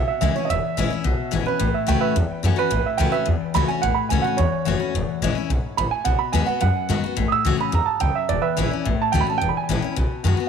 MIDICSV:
0, 0, Header, 1, 5, 480
1, 0, Start_track
1, 0, Key_signature, 4, "major"
1, 0, Tempo, 278552
1, 839, Time_signature, 4, 2, 24, 8
1, 18075, End_track
2, 0, Start_track
2, 0, Title_t, "Upright piano"
2, 0, Program_c, 0, 0
2, 134, Note_on_c, 0, 76, 87
2, 338, Note_off_c, 0, 76, 0
2, 364, Note_on_c, 0, 76, 86
2, 594, Note_off_c, 0, 76, 0
2, 608, Note_on_c, 0, 73, 83
2, 778, Note_on_c, 0, 75, 69
2, 813, Note_off_c, 0, 75, 0
2, 836, Note_off_c, 0, 73, 0
2, 861, Note_on_c, 0, 76, 105
2, 2245, Note_off_c, 0, 76, 0
2, 2525, Note_on_c, 0, 71, 90
2, 2986, Note_off_c, 0, 71, 0
2, 3005, Note_on_c, 0, 76, 79
2, 3233, Note_off_c, 0, 76, 0
2, 3245, Note_on_c, 0, 79, 87
2, 3459, Note_on_c, 0, 71, 89
2, 3462, Note_on_c, 0, 76, 93
2, 3473, Note_off_c, 0, 79, 0
2, 3689, Note_off_c, 0, 71, 0
2, 3700, Note_off_c, 0, 76, 0
2, 4457, Note_on_c, 0, 71, 107
2, 4911, Note_off_c, 0, 71, 0
2, 4930, Note_on_c, 0, 76, 85
2, 5127, Note_on_c, 0, 79, 94
2, 5154, Note_off_c, 0, 76, 0
2, 5367, Note_on_c, 0, 71, 80
2, 5372, Note_off_c, 0, 79, 0
2, 5375, Note_on_c, 0, 76, 102
2, 5602, Note_off_c, 0, 71, 0
2, 5617, Note_off_c, 0, 76, 0
2, 6110, Note_on_c, 0, 83, 109
2, 6343, Note_on_c, 0, 80, 88
2, 6344, Note_off_c, 0, 83, 0
2, 6576, Note_on_c, 0, 78, 113
2, 6581, Note_off_c, 0, 80, 0
2, 6796, Note_on_c, 0, 83, 92
2, 6817, Note_off_c, 0, 78, 0
2, 7047, Note_off_c, 0, 83, 0
2, 7051, Note_on_c, 0, 80, 81
2, 7267, Note_on_c, 0, 78, 96
2, 7295, Note_off_c, 0, 80, 0
2, 7523, Note_off_c, 0, 78, 0
2, 7531, Note_on_c, 0, 73, 105
2, 8473, Note_off_c, 0, 73, 0
2, 9950, Note_on_c, 0, 83, 95
2, 10185, Note_off_c, 0, 83, 0
2, 10186, Note_on_c, 0, 80, 93
2, 10418, Note_on_c, 0, 78, 94
2, 10424, Note_off_c, 0, 80, 0
2, 10660, Note_off_c, 0, 78, 0
2, 10661, Note_on_c, 0, 83, 98
2, 10899, Note_on_c, 0, 80, 94
2, 10901, Note_off_c, 0, 83, 0
2, 11139, Note_on_c, 0, 78, 87
2, 11140, Note_off_c, 0, 80, 0
2, 11372, Note_off_c, 0, 78, 0
2, 11397, Note_on_c, 0, 78, 102
2, 12329, Note_off_c, 0, 78, 0
2, 12549, Note_on_c, 0, 87, 73
2, 12581, Note_off_c, 0, 87, 0
2, 12619, Note_on_c, 0, 88, 105
2, 13074, Note_off_c, 0, 88, 0
2, 13108, Note_on_c, 0, 83, 90
2, 13326, Note_off_c, 0, 83, 0
2, 13347, Note_on_c, 0, 82, 95
2, 13541, Note_on_c, 0, 81, 89
2, 13566, Note_off_c, 0, 82, 0
2, 13782, Note_off_c, 0, 81, 0
2, 13799, Note_on_c, 0, 79, 93
2, 14031, Note_off_c, 0, 79, 0
2, 14051, Note_on_c, 0, 76, 93
2, 14278, Note_off_c, 0, 76, 0
2, 14283, Note_on_c, 0, 74, 96
2, 14503, Note_on_c, 0, 71, 92
2, 14506, Note_on_c, 0, 76, 101
2, 14514, Note_off_c, 0, 74, 0
2, 14957, Note_off_c, 0, 71, 0
2, 14978, Note_off_c, 0, 76, 0
2, 15535, Note_on_c, 0, 81, 97
2, 15702, Note_off_c, 0, 81, 0
2, 15716, Note_on_c, 0, 79, 100
2, 15862, Note_on_c, 0, 83, 88
2, 15874, Note_off_c, 0, 79, 0
2, 16022, Note_on_c, 0, 81, 80
2, 16026, Note_off_c, 0, 83, 0
2, 16159, Note_on_c, 0, 79, 105
2, 16186, Note_off_c, 0, 81, 0
2, 16335, Note_off_c, 0, 79, 0
2, 16350, Note_on_c, 0, 83, 86
2, 16491, Note_on_c, 0, 80, 92
2, 16511, Note_off_c, 0, 83, 0
2, 16972, Note_off_c, 0, 80, 0
2, 18075, End_track
3, 0, Start_track
3, 0, Title_t, "Steel-string acoustic guitar"
3, 0, Program_c, 1, 25
3, 0, Note_on_c, 1, 47, 88
3, 360, Note_on_c, 1, 52, 83
3, 375, Note_on_c, 1, 56, 92
3, 388, Note_on_c, 1, 61, 94
3, 395, Note_on_c, 1, 64, 99
3, 590, Note_off_c, 1, 52, 0
3, 595, Note_off_c, 1, 64, 0
3, 597, Note_off_c, 1, 56, 0
3, 604, Note_off_c, 1, 61, 0
3, 616, Note_on_c, 1, 64, 63
3, 656, Note_on_c, 1, 61, 51
3, 796, Note_off_c, 1, 47, 0
3, 838, Note_off_c, 1, 64, 0
3, 857, Note_off_c, 1, 61, 0
3, 863, Note_on_c, 1, 40, 90
3, 1329, Note_on_c, 1, 52, 88
3, 1339, Note_on_c, 1, 56, 90
3, 1352, Note_on_c, 1, 61, 97
3, 1363, Note_on_c, 1, 64, 102
3, 1537, Note_off_c, 1, 64, 0
3, 1553, Note_off_c, 1, 52, 0
3, 1558, Note_on_c, 1, 64, 60
3, 1559, Note_off_c, 1, 56, 0
3, 1565, Note_off_c, 1, 61, 0
3, 1597, Note_on_c, 1, 61, 48
3, 1761, Note_off_c, 1, 40, 0
3, 1788, Note_off_c, 1, 64, 0
3, 1798, Note_on_c, 1, 47, 83
3, 1807, Note_off_c, 1, 61, 0
3, 2259, Note_on_c, 1, 52, 76
3, 2267, Note_on_c, 1, 56, 83
3, 2283, Note_on_c, 1, 61, 97
3, 2295, Note_on_c, 1, 64, 94
3, 2492, Note_off_c, 1, 64, 0
3, 2498, Note_off_c, 1, 52, 0
3, 2502, Note_off_c, 1, 56, 0
3, 2509, Note_off_c, 1, 61, 0
3, 2512, Note_on_c, 1, 64, 54
3, 2553, Note_on_c, 1, 61, 45
3, 2708, Note_off_c, 1, 47, 0
3, 2744, Note_off_c, 1, 64, 0
3, 2749, Note_on_c, 1, 45, 89
3, 2765, Note_off_c, 1, 61, 0
3, 3215, Note_on_c, 1, 52, 84
3, 3235, Note_on_c, 1, 57, 98
3, 3248, Note_on_c, 1, 61, 100
3, 3255, Note_on_c, 1, 66, 94
3, 3663, Note_off_c, 1, 45, 0
3, 3681, Note_off_c, 1, 52, 0
3, 3691, Note_off_c, 1, 57, 0
3, 3697, Note_off_c, 1, 61, 0
3, 3700, Note_off_c, 1, 66, 0
3, 3721, Note_on_c, 1, 40, 89
3, 4187, Note_on_c, 1, 52, 77
3, 4204, Note_on_c, 1, 57, 91
3, 4216, Note_on_c, 1, 61, 87
3, 4225, Note_on_c, 1, 66, 96
3, 4392, Note_off_c, 1, 66, 0
3, 4413, Note_on_c, 1, 66, 62
3, 4421, Note_off_c, 1, 52, 0
3, 4429, Note_off_c, 1, 57, 0
3, 4435, Note_off_c, 1, 61, 0
3, 4463, Note_on_c, 1, 61, 46
3, 4629, Note_off_c, 1, 40, 0
3, 4653, Note_off_c, 1, 66, 0
3, 4662, Note_on_c, 1, 45, 87
3, 4678, Note_off_c, 1, 61, 0
3, 5136, Note_on_c, 1, 52, 100
3, 5153, Note_on_c, 1, 57, 92
3, 5166, Note_on_c, 1, 61, 100
3, 5176, Note_on_c, 1, 66, 104
3, 5352, Note_off_c, 1, 66, 0
3, 5372, Note_on_c, 1, 66, 57
3, 5375, Note_off_c, 1, 52, 0
3, 5383, Note_off_c, 1, 57, 0
3, 5390, Note_off_c, 1, 61, 0
3, 5410, Note_on_c, 1, 61, 49
3, 5580, Note_off_c, 1, 45, 0
3, 5609, Note_on_c, 1, 40, 87
3, 5613, Note_off_c, 1, 66, 0
3, 5632, Note_off_c, 1, 61, 0
3, 6100, Note_on_c, 1, 52, 83
3, 6114, Note_on_c, 1, 57, 90
3, 6132, Note_on_c, 1, 61, 86
3, 6141, Note_on_c, 1, 66, 100
3, 6327, Note_off_c, 1, 66, 0
3, 6337, Note_off_c, 1, 52, 0
3, 6344, Note_off_c, 1, 57, 0
3, 6348, Note_on_c, 1, 66, 59
3, 6353, Note_off_c, 1, 61, 0
3, 6383, Note_on_c, 1, 61, 45
3, 6533, Note_off_c, 1, 40, 0
3, 6581, Note_off_c, 1, 66, 0
3, 6598, Note_off_c, 1, 61, 0
3, 6599, Note_on_c, 1, 45, 91
3, 7068, Note_on_c, 1, 52, 93
3, 7079, Note_on_c, 1, 57, 98
3, 7095, Note_on_c, 1, 61, 95
3, 7111, Note_on_c, 1, 66, 107
3, 7288, Note_off_c, 1, 66, 0
3, 7301, Note_off_c, 1, 52, 0
3, 7306, Note_off_c, 1, 57, 0
3, 7309, Note_on_c, 1, 66, 57
3, 7315, Note_off_c, 1, 61, 0
3, 7356, Note_on_c, 1, 61, 49
3, 7508, Note_off_c, 1, 45, 0
3, 7542, Note_off_c, 1, 66, 0
3, 7544, Note_on_c, 1, 40, 90
3, 7565, Note_off_c, 1, 61, 0
3, 8017, Note_on_c, 1, 52, 79
3, 8031, Note_on_c, 1, 57, 82
3, 8055, Note_on_c, 1, 61, 91
3, 8061, Note_on_c, 1, 66, 97
3, 8242, Note_off_c, 1, 66, 0
3, 8256, Note_off_c, 1, 52, 0
3, 8263, Note_off_c, 1, 57, 0
3, 8263, Note_on_c, 1, 66, 60
3, 8275, Note_off_c, 1, 61, 0
3, 8300, Note_on_c, 1, 61, 45
3, 8462, Note_off_c, 1, 40, 0
3, 8499, Note_off_c, 1, 66, 0
3, 8518, Note_off_c, 1, 61, 0
3, 8529, Note_on_c, 1, 40, 92
3, 8994, Note_on_c, 1, 52, 91
3, 9001, Note_on_c, 1, 56, 99
3, 9026, Note_on_c, 1, 61, 95
3, 9029, Note_on_c, 1, 64, 105
3, 9200, Note_off_c, 1, 64, 0
3, 9220, Note_on_c, 1, 64, 56
3, 9225, Note_off_c, 1, 52, 0
3, 9229, Note_off_c, 1, 56, 0
3, 9241, Note_off_c, 1, 61, 0
3, 9267, Note_on_c, 1, 61, 48
3, 9434, Note_off_c, 1, 40, 0
3, 9458, Note_off_c, 1, 64, 0
3, 9480, Note_on_c, 1, 44, 81
3, 9482, Note_off_c, 1, 61, 0
3, 9934, Note_off_c, 1, 44, 0
3, 9961, Note_on_c, 1, 45, 85
3, 10415, Note_off_c, 1, 45, 0
3, 10425, Note_on_c, 1, 47, 91
3, 10907, Note_on_c, 1, 51, 83
3, 10916, Note_on_c, 1, 56, 90
3, 10935, Note_on_c, 1, 59, 107
3, 10948, Note_on_c, 1, 66, 94
3, 11118, Note_off_c, 1, 66, 0
3, 11139, Note_on_c, 1, 66, 56
3, 11142, Note_off_c, 1, 51, 0
3, 11147, Note_off_c, 1, 56, 0
3, 11156, Note_off_c, 1, 59, 0
3, 11175, Note_on_c, 1, 59, 45
3, 11343, Note_off_c, 1, 47, 0
3, 11378, Note_off_c, 1, 66, 0
3, 11383, Note_on_c, 1, 42, 86
3, 11396, Note_off_c, 1, 59, 0
3, 11870, Note_on_c, 1, 51, 78
3, 11886, Note_on_c, 1, 56, 97
3, 11891, Note_on_c, 1, 59, 93
3, 11904, Note_on_c, 1, 66, 94
3, 12104, Note_off_c, 1, 51, 0
3, 12107, Note_off_c, 1, 66, 0
3, 12112, Note_off_c, 1, 56, 0
3, 12115, Note_off_c, 1, 59, 0
3, 12128, Note_on_c, 1, 66, 65
3, 12166, Note_on_c, 1, 59, 47
3, 12302, Note_off_c, 1, 42, 0
3, 12349, Note_on_c, 1, 45, 91
3, 12353, Note_off_c, 1, 66, 0
3, 12372, Note_off_c, 1, 59, 0
3, 12832, Note_on_c, 1, 52, 93
3, 12842, Note_on_c, 1, 57, 88
3, 12861, Note_on_c, 1, 61, 100
3, 12864, Note_on_c, 1, 66, 108
3, 13033, Note_off_c, 1, 66, 0
3, 13053, Note_on_c, 1, 66, 57
3, 13065, Note_off_c, 1, 52, 0
3, 13070, Note_off_c, 1, 57, 0
3, 13080, Note_off_c, 1, 61, 0
3, 13101, Note_on_c, 1, 61, 45
3, 13266, Note_off_c, 1, 45, 0
3, 13296, Note_off_c, 1, 66, 0
3, 13308, Note_on_c, 1, 44, 81
3, 13320, Note_off_c, 1, 61, 0
3, 13769, Note_off_c, 1, 44, 0
3, 13788, Note_on_c, 1, 42, 84
3, 14249, Note_off_c, 1, 42, 0
3, 14286, Note_on_c, 1, 40, 93
3, 14761, Note_on_c, 1, 52, 86
3, 14771, Note_on_c, 1, 56, 97
3, 14789, Note_on_c, 1, 61, 99
3, 14801, Note_on_c, 1, 64, 98
3, 14990, Note_off_c, 1, 52, 0
3, 14991, Note_off_c, 1, 64, 0
3, 14996, Note_off_c, 1, 56, 0
3, 15005, Note_off_c, 1, 61, 0
3, 15012, Note_on_c, 1, 64, 52
3, 15049, Note_on_c, 1, 61, 51
3, 15195, Note_off_c, 1, 40, 0
3, 15236, Note_off_c, 1, 64, 0
3, 15255, Note_off_c, 1, 61, 0
3, 15257, Note_on_c, 1, 45, 89
3, 15726, Note_on_c, 1, 52, 89
3, 15748, Note_on_c, 1, 57, 82
3, 15761, Note_on_c, 1, 61, 91
3, 15772, Note_on_c, 1, 66, 93
3, 15948, Note_off_c, 1, 66, 0
3, 15954, Note_off_c, 1, 52, 0
3, 15965, Note_off_c, 1, 57, 0
3, 15968, Note_on_c, 1, 66, 60
3, 15971, Note_off_c, 1, 61, 0
3, 16020, Note_on_c, 1, 61, 46
3, 16161, Note_off_c, 1, 45, 0
3, 16195, Note_off_c, 1, 66, 0
3, 16221, Note_off_c, 1, 61, 0
3, 16223, Note_on_c, 1, 40, 93
3, 16695, Note_on_c, 1, 52, 95
3, 16708, Note_on_c, 1, 56, 92
3, 16717, Note_on_c, 1, 61, 92
3, 16736, Note_on_c, 1, 64, 102
3, 16905, Note_off_c, 1, 64, 0
3, 16919, Note_off_c, 1, 52, 0
3, 16926, Note_off_c, 1, 56, 0
3, 16926, Note_on_c, 1, 64, 64
3, 16930, Note_off_c, 1, 61, 0
3, 16960, Note_on_c, 1, 61, 50
3, 17125, Note_off_c, 1, 40, 0
3, 17154, Note_off_c, 1, 64, 0
3, 17169, Note_on_c, 1, 47, 84
3, 17171, Note_off_c, 1, 61, 0
3, 17643, Note_on_c, 1, 51, 81
3, 17659, Note_on_c, 1, 56, 82
3, 17673, Note_on_c, 1, 59, 79
3, 17690, Note_on_c, 1, 66, 96
3, 17849, Note_off_c, 1, 66, 0
3, 17870, Note_on_c, 1, 66, 60
3, 17874, Note_off_c, 1, 51, 0
3, 17882, Note_off_c, 1, 56, 0
3, 17889, Note_off_c, 1, 59, 0
3, 17920, Note_on_c, 1, 59, 48
3, 18075, Note_off_c, 1, 47, 0
3, 18075, Note_off_c, 1, 59, 0
3, 18075, Note_off_c, 1, 66, 0
3, 18075, End_track
4, 0, Start_track
4, 0, Title_t, "Upright bass"
4, 0, Program_c, 2, 32
4, 374, Note_on_c, 2, 37, 89
4, 563, Note_off_c, 2, 37, 0
4, 856, Note_on_c, 2, 28, 90
4, 1045, Note_off_c, 2, 28, 0
4, 1334, Note_on_c, 2, 32, 94
4, 1522, Note_off_c, 2, 32, 0
4, 1805, Note_on_c, 2, 35, 97
4, 1997, Note_off_c, 2, 35, 0
4, 2288, Note_on_c, 2, 32, 82
4, 2478, Note_off_c, 2, 32, 0
4, 2766, Note_on_c, 2, 33, 87
4, 2957, Note_off_c, 2, 33, 0
4, 3252, Note_on_c, 2, 37, 90
4, 3440, Note_off_c, 2, 37, 0
4, 3726, Note_on_c, 2, 40, 105
4, 3917, Note_off_c, 2, 40, 0
4, 4195, Note_on_c, 2, 42, 90
4, 4390, Note_off_c, 2, 42, 0
4, 4681, Note_on_c, 2, 33, 96
4, 4873, Note_off_c, 2, 33, 0
4, 5158, Note_on_c, 2, 37, 101
4, 5352, Note_off_c, 2, 37, 0
4, 5649, Note_on_c, 2, 40, 99
4, 5838, Note_off_c, 2, 40, 0
4, 6122, Note_on_c, 2, 37, 93
4, 6314, Note_off_c, 2, 37, 0
4, 6606, Note_on_c, 2, 33, 91
4, 6796, Note_off_c, 2, 33, 0
4, 7083, Note_on_c, 2, 37, 97
4, 7275, Note_off_c, 2, 37, 0
4, 7566, Note_on_c, 2, 40, 99
4, 7757, Note_off_c, 2, 40, 0
4, 8035, Note_on_c, 2, 30, 94
4, 8230, Note_off_c, 2, 30, 0
4, 8511, Note_on_c, 2, 28, 95
4, 8708, Note_off_c, 2, 28, 0
4, 8987, Note_on_c, 2, 32, 98
4, 9186, Note_off_c, 2, 32, 0
4, 9472, Note_on_c, 2, 35, 97
4, 9669, Note_off_c, 2, 35, 0
4, 9959, Note_on_c, 2, 32, 88
4, 10153, Note_off_c, 2, 32, 0
4, 10440, Note_on_c, 2, 35, 91
4, 10634, Note_off_c, 2, 35, 0
4, 10920, Note_on_c, 2, 39, 102
4, 11114, Note_off_c, 2, 39, 0
4, 11415, Note_on_c, 2, 42, 99
4, 11603, Note_off_c, 2, 42, 0
4, 11883, Note_on_c, 2, 44, 92
4, 12076, Note_off_c, 2, 44, 0
4, 12362, Note_on_c, 2, 33, 92
4, 12556, Note_off_c, 2, 33, 0
4, 12841, Note_on_c, 2, 37, 95
4, 13035, Note_off_c, 2, 37, 0
4, 13320, Note_on_c, 2, 40, 99
4, 13515, Note_off_c, 2, 40, 0
4, 13812, Note_on_c, 2, 37, 92
4, 14002, Note_off_c, 2, 37, 0
4, 14288, Note_on_c, 2, 28, 97
4, 14480, Note_off_c, 2, 28, 0
4, 14780, Note_on_c, 2, 32, 97
4, 14967, Note_off_c, 2, 32, 0
4, 15271, Note_on_c, 2, 33, 102
4, 15454, Note_off_c, 2, 33, 0
4, 15749, Note_on_c, 2, 38, 92
4, 15933, Note_off_c, 2, 38, 0
4, 16219, Note_on_c, 2, 28, 94
4, 16408, Note_off_c, 2, 28, 0
4, 16693, Note_on_c, 2, 32, 97
4, 16884, Note_off_c, 2, 32, 0
4, 17183, Note_on_c, 2, 35, 97
4, 17371, Note_off_c, 2, 35, 0
4, 17649, Note_on_c, 2, 42, 87
4, 17843, Note_off_c, 2, 42, 0
4, 18075, End_track
5, 0, Start_track
5, 0, Title_t, "Muted upright bass strokes"
5, 138, Note_on_c, 9, 29, 71
5, 310, Note_off_c, 9, 29, 0
5, 611, Note_on_c, 9, 29, 68
5, 784, Note_off_c, 9, 29, 0
5, 1102, Note_on_c, 9, 29, 67
5, 1275, Note_off_c, 9, 29, 0
5, 1585, Note_on_c, 9, 29, 67
5, 1758, Note_off_c, 9, 29, 0
5, 2048, Note_on_c, 9, 29, 71
5, 2220, Note_off_c, 9, 29, 0
5, 2533, Note_on_c, 9, 29, 67
5, 2705, Note_off_c, 9, 29, 0
5, 3021, Note_on_c, 9, 29, 62
5, 3193, Note_off_c, 9, 29, 0
5, 3482, Note_on_c, 9, 29, 70
5, 3654, Note_off_c, 9, 29, 0
5, 3966, Note_on_c, 9, 29, 68
5, 4139, Note_off_c, 9, 29, 0
5, 4431, Note_on_c, 9, 29, 68
5, 4603, Note_off_c, 9, 29, 0
5, 4920, Note_on_c, 9, 29, 63
5, 5092, Note_off_c, 9, 29, 0
5, 5401, Note_on_c, 9, 29, 62
5, 5574, Note_off_c, 9, 29, 0
5, 5886, Note_on_c, 9, 29, 70
5, 6058, Note_off_c, 9, 29, 0
5, 6365, Note_on_c, 9, 29, 74
5, 6538, Note_off_c, 9, 29, 0
5, 6838, Note_on_c, 9, 29, 62
5, 7010, Note_off_c, 9, 29, 0
5, 7323, Note_on_c, 9, 29, 66
5, 7495, Note_off_c, 9, 29, 0
5, 7809, Note_on_c, 9, 29, 72
5, 7981, Note_off_c, 9, 29, 0
5, 8273, Note_on_c, 9, 29, 70
5, 8446, Note_off_c, 9, 29, 0
5, 8759, Note_on_c, 9, 29, 63
5, 8931, Note_off_c, 9, 29, 0
5, 9224, Note_on_c, 9, 29, 67
5, 9396, Note_off_c, 9, 29, 0
5, 9705, Note_on_c, 9, 29, 69
5, 9877, Note_off_c, 9, 29, 0
5, 10206, Note_on_c, 9, 29, 67
5, 10378, Note_off_c, 9, 29, 0
5, 10682, Note_on_c, 9, 29, 65
5, 10854, Note_off_c, 9, 29, 0
5, 11169, Note_on_c, 9, 29, 69
5, 11341, Note_off_c, 9, 29, 0
5, 11651, Note_on_c, 9, 29, 70
5, 11823, Note_off_c, 9, 29, 0
5, 12123, Note_on_c, 9, 29, 70
5, 12296, Note_off_c, 9, 29, 0
5, 12608, Note_on_c, 9, 29, 61
5, 12780, Note_off_c, 9, 29, 0
5, 13073, Note_on_c, 9, 29, 66
5, 13246, Note_off_c, 9, 29, 0
5, 13557, Note_on_c, 9, 29, 72
5, 13729, Note_off_c, 9, 29, 0
5, 14049, Note_on_c, 9, 29, 67
5, 14221, Note_off_c, 9, 29, 0
5, 14534, Note_on_c, 9, 29, 65
5, 14707, Note_off_c, 9, 29, 0
5, 15025, Note_on_c, 9, 29, 66
5, 15197, Note_off_c, 9, 29, 0
5, 15509, Note_on_c, 9, 29, 72
5, 15681, Note_off_c, 9, 29, 0
5, 15981, Note_on_c, 9, 29, 71
5, 16154, Note_off_c, 9, 29, 0
5, 16463, Note_on_c, 9, 29, 64
5, 16636, Note_off_c, 9, 29, 0
5, 16942, Note_on_c, 9, 29, 70
5, 17114, Note_off_c, 9, 29, 0
5, 17413, Note_on_c, 9, 29, 71
5, 17585, Note_off_c, 9, 29, 0
5, 17902, Note_on_c, 9, 29, 71
5, 18074, Note_off_c, 9, 29, 0
5, 18075, End_track
0, 0, End_of_file